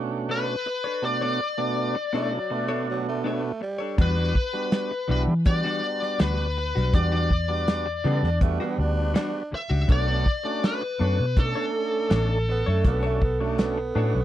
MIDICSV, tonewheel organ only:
0, 0, Header, 1, 2, 480
1, 0, Start_track
1, 0, Key_signature, 2, "minor"
1, 0, Tempo, 738916
1, 667, Time_signature, 4, 2, 24, 8
1, 9254, End_track
2, 0, Start_track
2, 0, Title_t, "Tonewheel organ"
2, 0, Program_c, 0, 16
2, 0, Note_on_c, 0, 47, 64
2, 0, Note_on_c, 0, 57, 58
2, 0, Note_on_c, 0, 61, 60
2, 0, Note_on_c, 0, 62, 61
2, 0, Note_on_c, 0, 66, 73
2, 362, Note_off_c, 0, 47, 0
2, 362, Note_off_c, 0, 57, 0
2, 363, Note_off_c, 0, 61, 0
2, 364, Note_off_c, 0, 62, 0
2, 364, Note_off_c, 0, 66, 0
2, 662, Note_on_c, 0, 47, 69
2, 663, Note_on_c, 0, 57, 64
2, 663, Note_on_c, 0, 59, 67
2, 664, Note_on_c, 0, 62, 67
2, 668, Note_on_c, 0, 66, 78
2, 911, Note_off_c, 0, 47, 0
2, 911, Note_off_c, 0, 57, 0
2, 911, Note_off_c, 0, 59, 0
2, 912, Note_off_c, 0, 62, 0
2, 914, Note_off_c, 0, 66, 0
2, 1023, Note_on_c, 0, 57, 63
2, 1024, Note_on_c, 0, 47, 79
2, 1025, Note_on_c, 0, 62, 73
2, 1026, Note_on_c, 0, 59, 66
2, 1027, Note_on_c, 0, 66, 83
2, 1272, Note_off_c, 0, 57, 0
2, 1273, Note_off_c, 0, 47, 0
2, 1273, Note_off_c, 0, 62, 0
2, 1274, Note_off_c, 0, 59, 0
2, 1274, Note_off_c, 0, 66, 0
2, 1387, Note_on_c, 0, 47, 82
2, 1388, Note_on_c, 0, 57, 75
2, 1389, Note_on_c, 0, 62, 78
2, 1390, Note_on_c, 0, 61, 77
2, 1392, Note_on_c, 0, 64, 92
2, 1552, Note_off_c, 0, 47, 0
2, 1553, Note_off_c, 0, 57, 0
2, 1554, Note_off_c, 0, 61, 0
2, 1554, Note_off_c, 0, 62, 0
2, 1555, Note_off_c, 0, 64, 0
2, 1628, Note_on_c, 0, 47, 76
2, 1629, Note_on_c, 0, 57, 68
2, 1629, Note_on_c, 0, 59, 72
2, 1630, Note_on_c, 0, 62, 66
2, 1633, Note_on_c, 0, 66, 84
2, 2286, Note_off_c, 0, 47, 0
2, 2286, Note_off_c, 0, 57, 0
2, 2286, Note_off_c, 0, 59, 0
2, 2287, Note_off_c, 0, 62, 0
2, 2288, Note_off_c, 0, 66, 0
2, 2583, Note_on_c, 0, 59, 62
2, 2584, Note_on_c, 0, 55, 71
2, 2585, Note_on_c, 0, 62, 62
2, 2586, Note_on_c, 0, 66, 79
2, 2832, Note_off_c, 0, 59, 0
2, 2833, Note_off_c, 0, 55, 0
2, 2833, Note_off_c, 0, 62, 0
2, 2834, Note_off_c, 0, 66, 0
2, 2943, Note_on_c, 0, 55, 70
2, 2945, Note_on_c, 0, 59, 68
2, 2948, Note_on_c, 0, 62, 67
2, 2949, Note_on_c, 0, 66, 80
2, 3193, Note_off_c, 0, 55, 0
2, 3194, Note_off_c, 0, 59, 0
2, 3195, Note_off_c, 0, 62, 0
2, 3196, Note_off_c, 0, 66, 0
2, 3298, Note_on_c, 0, 59, 68
2, 3299, Note_on_c, 0, 55, 71
2, 3300, Note_on_c, 0, 62, 63
2, 3303, Note_on_c, 0, 64, 80
2, 3469, Note_off_c, 0, 55, 0
2, 3469, Note_off_c, 0, 59, 0
2, 3469, Note_off_c, 0, 62, 0
2, 3471, Note_off_c, 0, 64, 0
2, 3543, Note_on_c, 0, 55, 66
2, 3547, Note_on_c, 0, 59, 61
2, 3548, Note_on_c, 0, 62, 57
2, 3549, Note_on_c, 0, 66, 69
2, 4203, Note_off_c, 0, 55, 0
2, 4206, Note_off_c, 0, 59, 0
2, 4206, Note_off_c, 0, 62, 0
2, 4206, Note_off_c, 0, 66, 0
2, 4507, Note_on_c, 0, 55, 67
2, 4507, Note_on_c, 0, 59, 71
2, 4509, Note_on_c, 0, 62, 67
2, 4511, Note_on_c, 0, 66, 82
2, 4754, Note_off_c, 0, 55, 0
2, 4754, Note_off_c, 0, 59, 0
2, 4756, Note_off_c, 0, 62, 0
2, 4756, Note_off_c, 0, 66, 0
2, 4860, Note_on_c, 0, 55, 75
2, 4863, Note_on_c, 0, 59, 67
2, 4864, Note_on_c, 0, 62, 70
2, 4865, Note_on_c, 0, 66, 86
2, 5111, Note_off_c, 0, 55, 0
2, 5113, Note_off_c, 0, 59, 0
2, 5113, Note_off_c, 0, 62, 0
2, 5114, Note_off_c, 0, 66, 0
2, 5222, Note_on_c, 0, 55, 84
2, 5222, Note_on_c, 0, 59, 82
2, 5225, Note_on_c, 0, 62, 79
2, 5227, Note_on_c, 0, 69, 99
2, 5390, Note_off_c, 0, 55, 0
2, 5390, Note_off_c, 0, 59, 0
2, 5392, Note_off_c, 0, 62, 0
2, 5393, Note_off_c, 0, 69, 0
2, 5465, Note_on_c, 0, 55, 80
2, 5465, Note_on_c, 0, 59, 68
2, 5468, Note_on_c, 0, 62, 72
2, 5470, Note_on_c, 0, 66, 85
2, 6124, Note_off_c, 0, 55, 0
2, 6124, Note_off_c, 0, 59, 0
2, 6125, Note_off_c, 0, 62, 0
2, 6127, Note_off_c, 0, 66, 0
2, 6423, Note_on_c, 0, 57, 70
2, 6426, Note_on_c, 0, 59, 66
2, 6427, Note_on_c, 0, 62, 63
2, 6429, Note_on_c, 0, 66, 85
2, 6672, Note_off_c, 0, 57, 0
2, 6673, Note_off_c, 0, 59, 0
2, 6674, Note_off_c, 0, 62, 0
2, 6675, Note_off_c, 0, 66, 0
2, 6786, Note_on_c, 0, 57, 76
2, 6790, Note_on_c, 0, 61, 72
2, 6790, Note_on_c, 0, 62, 67
2, 6792, Note_on_c, 0, 66, 86
2, 7034, Note_off_c, 0, 57, 0
2, 7036, Note_off_c, 0, 61, 0
2, 7036, Note_off_c, 0, 62, 0
2, 7037, Note_off_c, 0, 66, 0
2, 7143, Note_on_c, 0, 57, 77
2, 7145, Note_on_c, 0, 62, 67
2, 7147, Note_on_c, 0, 61, 66
2, 7150, Note_on_c, 0, 66, 79
2, 7310, Note_off_c, 0, 57, 0
2, 7311, Note_off_c, 0, 62, 0
2, 7312, Note_off_c, 0, 61, 0
2, 7314, Note_off_c, 0, 66, 0
2, 7387, Note_on_c, 0, 57, 63
2, 7390, Note_on_c, 0, 61, 61
2, 7390, Note_on_c, 0, 62, 58
2, 7394, Note_on_c, 0, 69, 76
2, 8044, Note_off_c, 0, 57, 0
2, 8046, Note_off_c, 0, 61, 0
2, 8046, Note_off_c, 0, 62, 0
2, 8048, Note_off_c, 0, 69, 0
2, 8341, Note_on_c, 0, 57, 85
2, 8343, Note_on_c, 0, 62, 74
2, 8344, Note_on_c, 0, 61, 75
2, 8347, Note_on_c, 0, 66, 94
2, 8590, Note_off_c, 0, 57, 0
2, 8591, Note_off_c, 0, 62, 0
2, 8592, Note_off_c, 0, 61, 0
2, 8593, Note_off_c, 0, 66, 0
2, 8703, Note_on_c, 0, 57, 86
2, 8707, Note_on_c, 0, 61, 77
2, 8709, Note_on_c, 0, 62, 88
2, 8710, Note_on_c, 0, 66, 100
2, 8952, Note_off_c, 0, 57, 0
2, 8954, Note_off_c, 0, 61, 0
2, 8955, Note_off_c, 0, 62, 0
2, 8955, Note_off_c, 0, 66, 0
2, 9061, Note_on_c, 0, 61, 77
2, 9063, Note_on_c, 0, 57, 82
2, 9063, Note_on_c, 0, 62, 76
2, 9065, Note_on_c, 0, 66, 95
2, 9229, Note_off_c, 0, 61, 0
2, 9230, Note_off_c, 0, 57, 0
2, 9230, Note_off_c, 0, 62, 0
2, 9231, Note_off_c, 0, 66, 0
2, 9254, End_track
0, 0, End_of_file